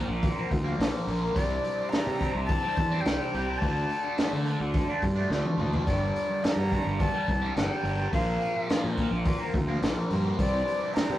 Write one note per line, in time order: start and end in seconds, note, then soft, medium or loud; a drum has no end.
0.00 0.37 A#2 medium
0.00 1.35 C4 medium
0.00 1.34 F4 medium
0.00 1.34 A#4 medium
0.08 0.31 A#1 medium
0.08 muted distorted electric guitar stroke soft
0.23 kick loud
0.23 open hi-hat medium
0.36 0.50 F3 medium
0.36 0.50 A#3 medium
0.51 0.73 D2 medium
0.51 muted distorted electric guitar stroke medium
0.51 kick medium
0.51 open hi-hat soft
0.64 0.79 F3 medium
0.64 0.80 A#3 medium
0.78 0.90 A#1 medium
0.78 1.07 A#2 medium
0.78 1.07 F3 medium
0.78 1.09 A#3 medium
0.78 snare loud
0.78 open hi-hat medium
1.07 1.29 A#1 medium
1.07 1.34 A#2 medium
1.07 1.23 F3 medium
1.07 1.21 A#3 medium
1.07 open hi-hat soft
1.22 1.36 F3 medium
1.22 1.34 A#3 medium
1.35 1.58 C2 medium
1.35 1.91 C3 medium
1.35 1.80 G3 medium
1.35 8.09 D4 medium
1.35 3.59 E4 medium
1.35 3.59 C5 medium
1.35 1.91 D5 medium
1.35 kick medium
1.35 open hi-hat medium
1.39 1.77 C4 medium
1.64 open hi-hat soft
1.78 1.93 G3 medium
1.78 1.95 C4 medium
1.89 2.19 C3 medium
1.89 2.45 A#5 loud
1.89 snare loud
1.89 open hi-hat medium
1.94 2.20 G3 medium
1.94 2.21 C4 medium
2.07 2.29 C3 medium
2.20 2.63 C3 medium
2.20 2.34 G3 medium
2.20 2.33 C4 medium
2.20 kick medium
2.20 open hi-hat soft
2.34 2.57 C2 medium
2.34 muted distorted electric guitar stroke soft
2.46 3.02 A5 loud
2.46 kick loud
2.46 open hi-hat medium
2.62 2.76 G3 medium
2.62 2.77 C4 medium
2.76 2.99 E2 medium
2.76 muted distorted electric guitar stroke soft
2.76 kick medium
2.76 open hi-hat soft
2.91 3.06 G3 soft
2.91 3.07 C4 medium
3.01 3.60 G5 medium
3.05 3.17 C2 medium
3.05 3.32 C3 medium
3.05 3.34 G3 medium
3.05 3.35 C4 medium
3.05 snare loud
3.05 open hi-hat medium
3.33 3.56 C2 medium
3.33 3.60 C3 medium
3.33 3.50 G3 medium
3.33 3.47 C4 medium
3.33 open hi-hat soft
3.48 3.62 G3 soft
3.48 3.60 C4 medium
3.58 3.84 D2 medium
3.58 4.16 D3 medium
3.58 4.45 A5 loud
3.58 kick medium
3.58 open hi-hat medium
3.63 4.05 A3 medium
3.63 4.04 D4 medium
3.63 5.86 F4 medium
3.63 5.86 A4 medium
3.90 open hi-hat soft
4.04 4.18 A3 soft
4.04 4.19 D4 medium
4.18 4.45 D3 medium
4.18 4.46 A3 medium
4.18 4.49 D4 medium
4.18 snare loud
4.18 open hi-hat medium
4.33 4.55 D3 medium
4.46 4.89 D3 medium
4.46 4.60 A3 medium
4.46 4.59 D4 medium
4.46 open hi-hat soft
4.60 4.82 D2 medium
4.60 muted distorted electric guitar stroke soft
4.74 kick loud
4.74 open hi-hat medium
4.88 5.02 A3 soft
4.88 5.03 D4 medium
5.02 5.24 G2 medium
5.02 muted distorted electric guitar stroke soft
5.02 kick medium
5.02 open hi-hat soft
5.15 5.30 A3 soft
5.15 5.31 D4 medium
5.30 5.41 D2 medium
5.30 5.57 D3 medium
5.30 5.58 A3 medium
5.30 5.59 D4 medium
5.30 snare medium
5.45 high tom medium
5.58 5.80 D2 medium
5.58 5.84 D3 medium
5.58 5.74 A3 medium
5.58 5.71 D4 medium
5.58 mid tom medium
5.72 5.86 A3 medium
5.72 5.85 D4 medium
5.72 floor tom medium
5.84 6.09 G1 medium
5.84 6.41 G2 medium
5.84 6.29 D3 medium
5.84 6.26 G3 medium
5.84 8.11 G4 medium
5.84 6.46 D5 medium
5.84 kick medium
5.84 open hi-hat medium
5.88 8.11 A#4 medium
6.16 open hi-hat soft
6.28 6.42 D3 soft
6.28 6.43 G3 medium
6.42 6.70 G2 medium
6.42 6.71 D3 medium
6.42 6.72 G3 medium
6.42 7.03 A#5 loud
6.42 snare loud
6.42 open hi-hat medium
6.56 6.79 G2 medium
6.71 7.14 G2 medium
6.71 6.85 D3 medium
6.71 6.84 G3 medium
6.71 kick medium
6.71 open hi-hat soft
6.85 7.08 G1 medium
6.85 muted distorted electric guitar stroke soft
7.00 7.56 A5 loud
7.00 kick loud
7.00 open hi-hat medium
7.14 7.27 D3 medium
7.14 7.28 G3 medium
7.28 7.50 C2 medium
7.28 muted distorted electric guitar stroke soft
7.28 kick medium
7.28 open hi-hat soft
7.41 7.55 D3 soft
7.41 7.57 G3 medium
7.55 7.67 G1 medium
7.55 7.82 G2 medium
7.55 7.83 D3 medium
7.55 7.84 G3 medium
7.55 8.09 G5 medium
7.55 snare loud
7.55 open hi-hat medium
7.83 8.06 G1 medium
7.83 8.10 G2 medium
7.83 7.99 D3 medium
7.83 7.96 G3 medium
7.83 open hi-hat soft
7.98 8.11 D3 medium
7.98 8.11 G3 medium
8.11 8.35 A#1 medium
8.11 8.67 A#2 medium
8.11 8.55 F3 medium
8.11 8.53 A#3 medium
8.11 10.37 C4 medium
8.11 10.37 F4 medium
8.11 10.37 A#4 medium
8.11 8.94 F5 medium
8.11 kick medium
8.11 open hi-hat medium
8.41 open hi-hat soft
8.54 8.68 F3 soft
8.54 8.70 A#3 medium
8.68 8.95 A#2 medium
8.68 8.96 F3 medium
8.68 8.98 A#3 medium
8.68 snare loud
8.68 open hi-hat medium
8.84 9.06 A#2 medium
8.96 9.39 A#2 medium
8.96 9.12 F3 medium
8.96 9.11 A#3 medium
8.96 kick medium
8.96 open hi-hat soft
9.11 9.33 A#1 medium
9.11 muted distorted electric guitar stroke soft
9.25 kick loud
9.25 open hi-hat medium
9.40 9.53 F3 medium
9.40 9.53 A#3 medium
9.54 9.76 D2 medium
9.54 muted distorted electric guitar stroke soft
9.54 kick medium
9.54 open hi-hat soft
9.67 9.81 F3 soft
9.67 9.83 A#3 medium
9.81 9.93 A#1 medium
9.81 10.09 A#2 medium
9.81 10.10 F3 medium
9.81 10.12 A#3 medium
9.81 snare loud
9.81 open hi-hat medium
10.10 10.33 G2 medium
10.10 10.37 A#2 medium
10.10 10.26 F3 medium
10.10 10.23 A#3 medium
10.10 open hi-hat soft
10.24 10.38 F3 medium
10.24 10.37 A#3 medium
10.38 10.61 C2 medium
10.38 10.94 C3 medium
10.38 11.19 E3 medium
10.38 10.82 G3 medium
10.38 10.80 C4 loud
10.38 11.19 D4 medium
10.38 11.19 C5 medium
10.38 10.95 D5 loud
10.38 kick medium
10.38 open hi-hat medium
10.68 open hi-hat soft
10.81 10.95 G3 medium
10.81 10.97 C4 medium
10.94 11.19 C3 medium
10.94 11.19 G3 medium
10.94 11.19 A#5 loud
10.94 snare loud
10.94 open hi-hat medium
10.98 11.19 C4 medium
11.09 11.19 C3 medium